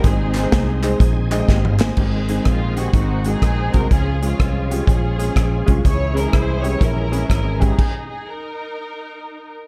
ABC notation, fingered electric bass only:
X:1
M:4/4
L:1/8
Q:"Swing" 1/4=124
K:Dblyd
V:1 name="Fingered electric bass" clef=bass
A,,,2 C,,2 B,,,2 A,,,2 | A,,,2 B,,,2 A,,,2 B,,, C,, | D,,2 C,,2 B,,,2 B,,, C,, | D,,2 C,,2 B,,,2 A,,,2 |
z8 |]